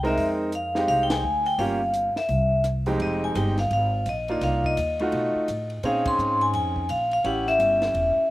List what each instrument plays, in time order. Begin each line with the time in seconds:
Already playing: upright bass C2
0.03 grand piano G#3 C4 D#4 A#4, vibraphone E5, open hi-hat
0.17 upright bass F2, open hi-hat
0.52 vibraphone F5, closed hi-hat
0.75 grand piano G#3 C4 D#4 G4, snare
0.88 upright bass C2, vibraphone F5, open hi-hat
1.03 vibraphone G5
1.10 vibraphone G#5, snare, ride
1.23 upright bass D2
1.46 vibraphone G5, open hi-hat
1.58 upright bass G1, grand piano A#3 C#4 F4 G4, vibraphone F5, open hi-hat
1.94 closed hi-hat
2.16 vibraphone E5, muted upright bass stroke, snare
2.29 upright bass C2, open hi-hat
2.64 cross-stick, closed hi-hat
2.86 grand piano F2 G#3 C4 D#4 G4, open hi-hat
2.99 upright bass F1, vibraphone D#5, ride
3.24 vibraphone G#5
3.35 upright bass G1, grand piano G#3 C4 D#4 G4, vibraphone G5, hi-hat pedal, ride
3.58 vibraphone F5, snare, ride
3.70 upright bass G#1, vibraphone F5, ride
4.06 upright bass A#1, vibraphone D#5, hi-hat pedal, ride
4.28 grand piano A#3 D4 D#4 F4, vibraphone D#5, ride
4.41 upright bass C2, vibraphone F5, snare, ride
4.64 vibraphone D#5, kick
4.77 upright bass D#2, hi-hat pedal, ride
4.99 grand piano A3 D#4 F4 F#4, ride
5.12 upright bass B2, ride
5.35 muted upright bass stroke
5.48 upright bass A2, hi-hat pedal, ride
5.70 ride
5.83 upright bass A#2, grand piano C4 C#4 D#4 G#4, vibraphone F5, ride
6.05 vibraphone C6, kick, ride
6.18 upright bass G#2, hi-hat pedal
6.41 vibraphone G#5, ride
6.53 upright bass F2, vibraphone G#5, ride
6.76 kick
6.89 upright bass A#1, vibraphone F5, hi-hat pedal, ride
7.11 vibraphone F5, ride
7.24 upright bass A1, grand piano C#4 E4 G4, vibraphone F#5, ride
7.47 vibraphone E5, snare
7.59 upright bass G1, hi-hat pedal, ride
7.82 snare, ride
7.94 upright bass E1, ride
8.17 muted upright bass stroke